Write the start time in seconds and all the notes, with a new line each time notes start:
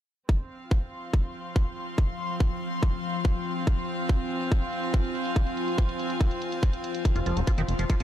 0.29 F3 C4, kick
0.40 closed hi-hat
0.44 F5
0.50 closed hi-hat
0.61 F4, closed hi-hat
0.71 kick
0.82 closed hi-hat
0.90 C6, closed hi-hat
1.14 kick
1.24 closed hi-hat
1.35 closed hi-hat
1.45 closed hi-hat
1.56 kick
1.66 closed hi-hat
1.77 closed hi-hat
1.98 kick
2.09 closed hi-hat
2.19 closed hi-hat
2.30 closed hi-hat
2.40 kick
2.51 closed hi-hat
2.61 closed hi-hat
2.72 closed hi-hat
2.83 kick
2.93 closed hi-hat
3.04 closed hi-hat
3.14 closed hi-hat
3.25 kick
3.35 closed hi-hat
3.46 closed hi-hat
3.56 closed hi-hat
3.67 kick, closed hi-hat
3.78 closed hi-hat
3.88 closed hi-hat
3.99 closed hi-hat
4.09 kick, closed hi-hat
4.20 closed hi-hat
4.28 G#5, closed hi-hat
4.41 closed hi-hat
4.52 kick, closed hi-hat
4.62 closed hi-hat
4.73 closed hi-hat
4.83 closed hi-hat
4.94 kick, closed hi-hat
5.04 closed hi-hat
5.15 closed hi-hat
5.26 closed hi-hat
5.36 kick, closed hi-hat
5.47 closed hi-hat
5.57 closed hi-hat
5.68 closed hi-hat
5.78 kick, closed hi-hat
5.89 closed hi-hat
5.99 closed hi-hat
6.10 closed hi-hat
6.21 kick, closed hi-hat
6.31 closed hi-hat
6.42 closed hi-hat
6.52 closed hi-hat
6.63 kick, closed hi-hat
6.73 closed hi-hat
6.84 closed hi-hat
6.95 closed hi-hat
7.05 A#3, kick, closed hi-hat
7.16 F1 F4, closed hi-hat
7.26 F1 F3, closed hi-hat
7.37 D#1 F#3, closed hi-hat
7.47 F4, kick, closed hi-hat
7.58 F1 D#3, closed hi-hat
7.66 F1 C6, closed hi-hat
7.79 F1 F3, closed hi-hat
7.90 F3, kick, closed hi-hat